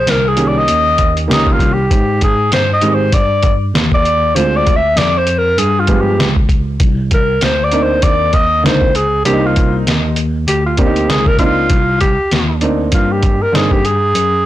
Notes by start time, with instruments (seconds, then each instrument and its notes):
Already playing: alto saxophone C5
0.07 tine electric piano C2, alto saxophone A#4, snare, closed hi-hat
0.28 alto saxophone G#4
0.36 upright piano D#3 A#3 C#4 G4, closed hi-hat
0.48 alto saxophone D5
0.58 alto saxophone D#5
0.68 tine electric piano D#2, closed hi-hat
0.98 kick, closed hi-hat
1.17 closed hi-hat
1.28 tine electric piano C#2, upright piano D#3 A#3 C#4 G4, snare, closed hi-hat
1.33 alto saxophone D#4
1.47 kick
1.52 alto saxophone F4
1.59 tine electric piano C2, kick, closed hi-hat
1.73 alto saxophone G4
1.91 tine electric piano G#2, kick, closed hi-hat
2.21 alto saxophone G#4, kick, closed hi-hat
2.52 tine electric piano G2, alto saxophone C5, snare, closed hi-hat
2.73 alto saxophone D#5
2.81 tine electric piano G#2, upright piano D#3 G#3 C4 G4, closed hi-hat
2.94 alto saxophone C5
3.12 tine electric piano G2, alto saxophone D5, kick, closed hi-hat
3.43 kick, closed hi-hat
3.74 tine electric piano D#2, snare, closed hi-hat
3.92 alto saxophone D5, kick
4.05 closed hi-hat
4.35 tine electric piano D2, upright piano D3 G#3 C4 F4, alto saxophone C5, closed hi-hat
4.57 alto saxophone D5
4.67 kick, closed hi-hat
4.76 alto saxophone E5
4.96 tine electric piano F2, alto saxophone D5, snare, closed hi-hat
5.18 alto saxophone C5
5.27 closed hi-hat
5.38 alto saxophone A#4
5.58 tine electric piano G2, alto saxophone G#4, closed hi-hat
5.80 alto saxophone F4
5.87 upright piano F3 G#3 B3 G4, kick, closed hi-hat
6.00 alto saxophone G4
6.19 tine electric piano C#2, snare, closed hi-hat
6.36 kick
6.49 kick, closed hi-hat
6.80 tine electric piano C2, kick, closed hi-hat
7.11 alto saxophone A#4, kick, closed hi-hat
7.41 tine electric piano D2, alto saxophone C5, snare, closed hi-hat
7.64 alto saxophone D5
7.71 upright piano A#3 C4 D4 D#4, closed hi-hat
7.83 alto saxophone C5
8.02 tine electric piano D#2, alto saxophone D5, kick, closed hi-hat
8.33 alto saxophone D#5, kick, closed hi-hat
8.63 tine electric piano C#2, upright piano D3 A#3 C4 D#4, alto saxophone C5, snare, closed hi-hat
8.82 kick
8.95 alto saxophone G#4, closed hi-hat
9.25 tine electric piano C2, upright piano A#3 C4 D4, alto saxophone G4, closed hi-hat
9.34 upright piano D#4
9.46 alto saxophone F4
9.56 kick, closed hi-hat
9.86 tine electric piano D#2, snare, closed hi-hat
10.16 closed hi-hat
10.47 tine electric piano D2, alto saxophone G4, closed hi-hat
10.66 alto saxophone F4
10.77 upright piano A#3 C4 D4, alto saxophone G4, kick, closed hi-hat
10.86 upright piano D#4
10.96 closed hi-hat
11.09 tine electric piano C#2, alto saxophone G#4, snare, closed hi-hat
11.26 alto saxophone A#4, kick
11.39 upright piano A#3 C4 D4 D#4, alto saxophone F4, kick, closed hi-hat
11.70 tine electric piano C2, kick, closed hi-hat
12.01 alto saxophone G4, kick, closed hi-hat
12.19 tine electric piano D#2
12.31 tine electric piano D#2, snare, closed hi-hat
12.61 tine electric piano D2, upright piano A#3 C4 D4 D#4, closed hi-hat
12.92 tine electric piano G2, alto saxophone F4, kick, closed hi-hat
13.12 alto saxophone G4
13.23 kick, closed hi-hat
13.40 tine electric piano G2, alto saxophone A#4
13.52 tine electric piano G2, upright piano D3 A#3 C4 D#4, alto saxophone G#4, snare, closed hi-hat
13.71 alto saxophone G4, kick
13.85 alto saxophone G#4, closed hi-hat
14.14 tine electric piano F#2, closed hi-hat